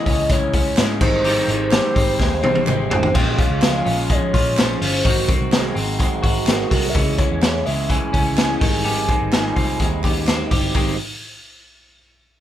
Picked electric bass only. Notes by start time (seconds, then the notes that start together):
0.06 C#2
0.78 G#2
1.01 G#1
1.48 G#1
1.96 G#1
2.19 D#2
2.44 C2
2.67 G#1
2.91 G#1
3.15 A#1
3.50 C#2
3.86 A#1
4.34 A#1
4.82 G1
5.05 G#1
5.41 C2
5.76 G#1
6.24 G#1
6.72 C2
6.95 C#2
7.31 E2
7.67 C#2
8.14 C#2
8.62 G#1
9.21 G#1
9.57 C2
9.80 D#2
10.04 D#2
10.51 G1
10.75 G#1